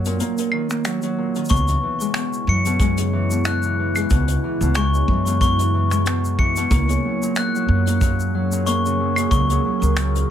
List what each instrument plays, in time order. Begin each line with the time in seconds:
Already playing: upright bass F#2, harp F#3 A#3
0.05 harp A#2, closed hi-hat, shaker
0.20 harp A#3, closed hi-hat, shaker
0.38 harp A#2, closed hi-hat, shaker
0.52 harp D#3, claves
0.70 harp A#3, finger snap, shaker
0.85 harp F#3, finger snap, closed hi-hat, shaker
1.02 harp F#3, closed hi-hat, shaker
1.18 harp A#2
1.35 harp D#3, closed hi-hat, shaker
1.45 shaker
1.49 upright bass C#2, harp B2, ambient pad C#3, glockenspiel C#6, kick, closed hi-hat, shaker
1.56 shaker
1.68 harp E3, closed hi-hat, shaker
1.83 harp E3
2.00 ambient pad G#3 E4, harp G#3, shaker
2.14 harp B2, finger snap, closed hi-hat, shaker
2.33 shaker
2.47 upright bass F#2, harp E3, glockenspiel C#7
2.65 harp B2, closed hi-hat, shaker
2.80 harp G#3, kick, closed hi-hat, shaker
2.97 harp C#3, closed hi-hat, shaker
3.13 harp E3
3.31 harp B2, shaker
3.45 harp B2, glockenspiel F#6, finger snap, closed hi-hat, shaker
3.63 harp E3, shaker
3.79 harp E3
3.96 harp G#3, closed hi-hat, claves, shaker
4.10 upright bass C#2, harp B2, kick, closed hi-hat, shaker
4.28 closed hi-hat, shaker
4.44 harp E3
4.61 upright bass C#2, harp B2, shaker
4.74 harp G#3, glockenspiel C#6, finger snap, closed hi-hat, shaker
4.94 harp C#3, shaker
5.08 upright bass F#2, harp E3, kick
5.27 harp B2, closed hi-hat, shaker
5.41 harp B2, glockenspiel C#6, kick, closed hi-hat, shaker
5.59 harp E3, closed hi-hat, shaker
5.74 harp E3
5.91 harp G#3, finger snap, shaker
6.06 harp B2, finger snap, closed hi-hat, shaker
6.25 shaker
6.39 harp E3, glockenspiel C#7, kick
6.56 harp B2, closed hi-hat, shaker
6.71 upright bass C#2, ambient pad F#3, harp A#3, kick, closed hi-hat, shaker
6.89 harp C#3, closed hi-hat, shaker
7.05 harp F#3
7.13 ambient pad C#4
7.22 harp A#2, shaker
7.36 harp A#2, ambient pad G#4, glockenspiel F#6, finger snap, closed hi-hat, shaker
7.56 harp F#3, shaker
7.68 upright bass F#2, harp F#3
7.87 harp A#3, closed hi-hat, shaker
8.01 harp A#2, kick, closed hi-hat, shaker
8.20 shaker
8.35 harp F#3
8.52 harp A#2, shaker
8.64 harp A#3, ambient pad A#4, glockenspiel C#6, closed hi-hat, shaker
8.86 harp C#3, shaker
9.00 harp F#3
9.16 harp A#2, closed hi-hat, claves, shaker
9.31 upright bass C#2, harp A#2, glockenspiel C#6, kick, closed hi-hat, shaker
9.50 harp F#3, closed hi-hat, shaker
9.65 harp F#3
9.82 upright bass C#2, harp A#3, shaker
9.97 harp A#2, finger snap, closed hi-hat, shaker
10.15 closed hi-hat, shaker